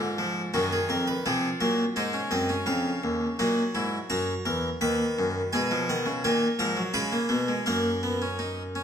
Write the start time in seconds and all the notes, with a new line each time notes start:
Already playing: G#2 D4 F4
0.18 F3
0.54 F#2 D#3 D#4 F#4
0.73 G#4
0.89 F2 A#4
1.08 B4
1.26 C3 F3 F4 G#4
1.61 A#2 F#3 A#4
1.96 G#2 G#3 D#4 C5
2.13 C#4
2.31 F#2 C4 D#5
2.49 C#4
2.66 F2 C#3 F5
3.04 D#2
3.39 A#2 F#3 D#4 F#5
3.75 G#2 E4
4.10 F#2 F#4 A#5
4.46 E2 A#4
4.81 D#2 D#3 B4 B5
5.19 F#2
5.53 B2 G#3 G#4 G#5
5.71 F3
5.89 D#3 F#5
6.06 C#3
6.24 A#2 D#3 A#4 G#5
6.59 G#2 F3 A#5
6.77 F#3
6.94 C#3 G#3 G#4 B5
7.12 A#3
7.29 B2 B3
7.48 G#3
7.66 F#2 A#3 A#4 F#5
8.03 B3
8.22 C#4
8.39 D#4
8.75 C#4